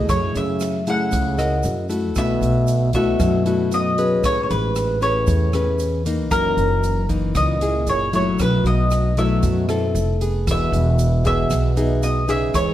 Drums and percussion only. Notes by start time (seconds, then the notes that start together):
0.09 kick, cross-stick, closed hi-hat, shaker
0.35 closed hi-hat, shaker
0.60 cross-stick, closed hi-hat, shaker
0.86 closed hi-hat, shaker
1.11 kick, closed hi-hat, shaker
1.38 cross-stick, closed hi-hat, shaker
1.63 closed hi-hat, shaker
1.89 closed hi-hat, shaker
2.15 kick, cross-stick, closed hi-hat, shaker
2.42 closed hi-hat, shaker
2.67 closed hi-hat, shaker
2.93 kick, closed hi-hat, shaker
3.20 kick, cross-stick, closed hi-hat, shaker
3.46 closed hi-hat, shaker
3.71 closed hi-hat, shaker
3.98 closed hi-hat, shaker
4.24 kick, cross-stick, closed hi-hat, shaker
4.50 closed hi-hat, shaker
4.76 cross-stick, closed hi-hat, shaker
5.01 closed hi-hat, shaker
5.27 kick, closed hi-hat, shaker
5.53 cross-stick, closed hi-hat, shaker
5.79 closed hi-hat, shaker
6.06 closed hi-hat, shaker
6.31 kick, cross-stick, closed hi-hat, shaker
6.58 closed hi-hat, shaker
6.83 closed hi-hat, shaker
7.09 kick, closed hi-hat, shaker
7.35 kick, cross-stick, closed hi-hat, shaker
7.61 closed hi-hat, shaker
7.87 closed hi-hat, shaker
8.13 closed hi-hat, shaker
8.39 kick, cross-stick, closed hi-hat, shaker
8.65 closed hi-hat, shaker
8.91 cross-stick, closed hi-hat, shaker
9.17 closed hi-hat, shaker
9.43 kick, closed hi-hat, shaker
9.69 cross-stick, closed hi-hat, shaker
9.95 closed hi-hat, shaker
10.21 closed hi-hat, shaker
10.47 kick, cross-stick, closed hi-hat, shaker
10.73 closed hi-hat, shaker
10.99 closed hi-hat, shaker
11.25 kick, closed hi-hat, shaker
11.50 kick, cross-stick, closed hi-hat, shaker
11.76 closed hi-hat, shaker
12.03 closed hi-hat, shaker
12.28 closed hi-hat, shaker
12.54 kick, cross-stick, closed hi-hat, shaker